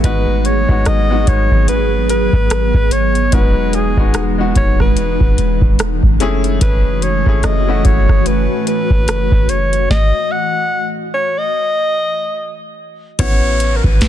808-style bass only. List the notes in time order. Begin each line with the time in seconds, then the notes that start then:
0.04 G#1
0.69 G#1
0.86 G#1
1.27 G#1
2.33 G#1
2.74 G#1
3.33 E1
3.97 E1
4.56 E1
5.20 E1
5.38 E1
5.62 E1
6.03 F#1
6.61 F#1
7.26 F#1
7.44 F#1
7.85 F#1
8.09 F#1
8.90 F#1
9.32 F#1
13.19 A1
13.84 A1
14.01 A1